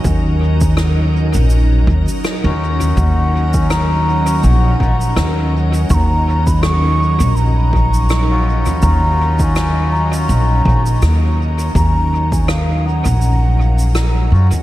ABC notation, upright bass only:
X:1
M:4/4
L:1/16
Q:"Swing 16ths" 1/4=82
K:Ebm
V:1 name="Upright bass" clef=bass
E,,6- E,, B,,,3 E,, z2 E,,3 | E,,8 B,,,2 B,,,2 E,,4 | E,,6- E,, B,,,8 z | E,,8 B,,,2 B,,,2 E,,4 |
E,,6- E,, B,,,6- B,,, G,, z |]